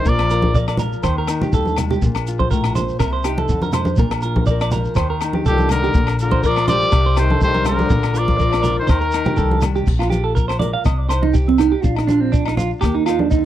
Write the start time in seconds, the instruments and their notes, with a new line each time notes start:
0.05 upright bass A#1, nylon-string guitar A#2, tenor saxophone F3, clean electric guitar A#4, trumpet D5, kick, shekere
0.19 cross-stick, low agogo
0.30 nylon-string guitar F4, clean electric guitar A#4, closed hi-hat, shekere
0.42 kick, high conga
0.54 nylon-string guitar F3 A#4, clean electric guitar D5, kick, shekere
0.68 clean electric guitar D5, cross-stick, low agogo, shekere
0.77 clean electric guitar A#4, closed hi-hat, high conga, low conga, shekere
0.93 shekere
1.03 upright bass D#2, nylon-string guitar D#3, clean electric guitar C5, kick, cross-stick, low agogo, shekere
1.18 clean electric guitar A#4
1.27 nylon-string guitar D#4, cross-stick, closed hi-hat, low agogo, shekere
1.42 clean electric guitar G4, high conga, low conga, shekere
1.53 upright bass D#2, nylon-string guitar G3, clean electric guitar A4, muted nylon-string guitar stroke, kick, shekere
1.65 high conga, shekere
1.76 cross-stick, closed hi-hat, low conga, low agogo, shekere
1.91 clean electric guitar G4, low conga, shekere
2.02 upright bass A#1, nylon-string guitar A#2, kick, shekere
2.15 cross-stick, low agogo, shekere
2.27 nylon-string guitar F4, closed hi-hat, shekere
2.39 clean electric guitar C5, kick, high conga
2.51 nylon-string guitar A2, clean electric guitar A#4, kick, shekere
2.64 cross-stick, low agogo, shekere
2.75 nylon-string guitar A#2, clean electric guitar C5, closed hi-hat, high conga, low conga, shekere
2.89 shekere
2.99 upright bass C2, nylon-string guitar C3, clean electric guitar A#4, kick, cross-stick, low agogo, shekere
3.13 clean electric guitar C5
3.24 nylon-string guitar D#4, clean electric guitar G4, cross-stick, closed hi-hat, low agogo, shekere
3.38 clean electric guitar A4, high conga
3.49 upright bass F2, nylon-string guitar D3, kick, shekere
3.62 clean electric guitar A#4, high conga, shekere
3.73 clean electric guitar C5, muted nylon-string guitar stroke, cross-stick, closed hi-hat, low conga, low agogo, shekere
3.85 high conga, shekere
3.96 upright bass A#1, nylon-string guitar A#2, clean electric guitar A#4, kick, shekere
4.11 cross-stick, low agogo, shekere
4.21 nylon-string guitar F4, clean electric guitar A#4, closed hi-hat, shekere
4.36 kick, high conga
4.46 nylon-string guitar F3, clean electric guitar D5, kick, shekere
4.50 nylon-string guitar A#4
4.60 clean electric guitar D5, cross-stick, low agogo, shekere
4.71 clean electric guitar A#4, closed hi-hat, high conga, low conga, shekere
4.85 shekere
4.95 upright bass D#2, nylon-string guitar D#3, clean electric guitar C5, kick, cross-stick, low agogo, shekere
5.10 clean electric guitar A#4
5.21 nylon-string guitar D#4, cross-stick, closed hi-hat, low agogo, shekere
5.33 clean electric guitar G4, high conga
5.46 upright bass C2, tenor saxophone A#2, nylon-string guitar G3 D#4, trumpet G4, clean electric guitar A4, kick, shekere
5.58 high conga, shekere
5.69 tenor saxophone D3, trumpet A#4, cross-stick, closed hi-hat, low conga, low agogo, shekere
5.84 clean electric guitar G4, shekere
5.94 upright bass A#1, nylon-string guitar A#2, kick, shekere
6.07 cross-stick, low agogo, shekere
6.19 tenor saxophone D3, nylon-string guitar F4, trumpet A#4, closed hi-hat, shekere
6.31 clean electric guitar C5, kick, high conga
6.44 nylon-string guitar F3 A#4, tenor saxophone F3, clean electric guitar A#4, trumpet D5, kick, shekere
6.56 cross-stick, low agogo, shekere
6.68 tenor saxophone G3, clean electric guitar C5, trumpet D5, closed hi-hat, high conga, low conga, shekere
6.82 shekere
6.92 upright bass C2, nylon-string guitar C3, muted clean electric guitar stroke, kick, cross-stick, low agogo, shekere
7.06 clean electric guitar C5
7.17 nylon-string guitar D#4, clean electric guitar G4, trumpet C5, cross-stick, closed hi-hat, low agogo, shekere
7.21 tenor saxophone D#3
7.30 clean electric guitar A4, high conga
7.41 upright bass C2, nylon-string guitar G3 G4, trumpet C5, kick, shekere
7.46 tenor saxophone D#3
7.54 clean electric guitar A#4, high conga, shekere
7.65 trumpet A#4, clean electric guitar C5, cross-stick, closed hi-hat, low conga, low agogo, shekere
7.70 tenor saxophone D3
7.79 high conga, shekere
7.90 upright bass A#1, nylon-string guitar A#2, clean electric guitar A#4, kick, shekere
8.03 cross-stick, low agogo, shekere
8.14 nylon-string guitar F4, clean electric guitar A#4, trumpet D5, closed hi-hat, shekere
8.19 tenor saxophone F3
8.28 kick, high conga, shekere
8.37 nylon-string guitar F3 A#4, clean electric guitar D5, kick, shekere
8.52 clean electric guitar D5, cross-stick, low agogo, shekere
8.63 clean electric guitar A#4, closed hi-hat, high conga, low conga, shekere
8.79 tenor saxophone D#3, trumpet C5
8.87 upright bass D#2, nylon-string guitar D#3, trumpet A#4, clean electric guitar C5, kick, cross-stick, low agogo, shekere
8.93 tenor saxophone D#3
9.01 clean electric guitar A#4, shekere
9.12 nylon-string guitar D#4, cross-stick, closed hi-hat, low agogo, shekere
9.25 clean electric guitar G4, high conga, low conga, shekere
9.37 upright bass C2, nylon-string guitar G3 G4, clean electric guitar A4, kick, shekere
9.51 high conga
9.61 cross-stick, closed hi-hat, low conga, low agogo, shekere
9.76 clean electric guitar G4, shekere
9.87 upright bass A#1, nylon-string guitar A#2, muted nylon-string guitar stroke, kick, crash, shekere
9.99 clean electric guitar F4, cross-stick, low agogo
10.10 nylon-string guitar F4, clean electric guitar G4, closed hi-hat, high conga, shekere
10.24 clean electric guitar A4
10.35 nylon-string guitar F3, clean electric guitar A#4, kick, shekere
10.48 clean electric guitar C5, cross-stick, low agogo
10.59 nylon-string guitar A#4, clean electric guitar D5, closed hi-hat, high conga, low conga
10.73 clean electric guitar F5
10.84 upright bass C2, nylon-string guitar C3 C4, clean electric guitar D#5, kick, cross-stick, low agogo, shekere
10.98 clean electric guitar D5
11.09 nylon-string guitar D#4, clean electric guitar C5, cross-stick, closed hi-hat, low agogo, shekere
11.22 clean electric guitar D#4, high conga
11.33 nylon-string guitar G3, clean electric guitar G4, kick, shekere
11.48 clean electric guitar C4, high conga
11.58 clean electric guitar D#4, nylon-string guitar G4, cross-stick, closed hi-hat, low conga, low agogo, shekere
11.72 clean electric guitar G4
11.82 upright bass A#1, nylon-string guitar A#2 D4, clean electric guitar F4, kick, shekere
11.95 clean electric guitar D#4, cross-stick, low agogo
12.07 clean electric guitar D4, nylon-string guitar F4, closed hi-hat, high conga, shekere
12.21 clean electric guitar C4
12.32 clean electric guitar D4, kick, shekere
12.46 clean electric guitar D#4, cross-stick, low agogo
12.57 nylon-string guitar D4, clean electric guitar F4, closed hi-hat, high conga, low conga, shekere
12.81 upright bass D#2, nylon-string guitar D#3 A#3, clean electric guitar G4, kick, cross-stick, low agogo, shekere
12.95 clean electric guitar D#4
13.06 nylon-string guitar D#4, clean electric guitar F4, cross-stick, closed hi-hat, low agogo, shekere
13.19 clean electric guitar D4, high conga
13.31 nylon-string guitar D3, clean electric guitar D#4, kick, shekere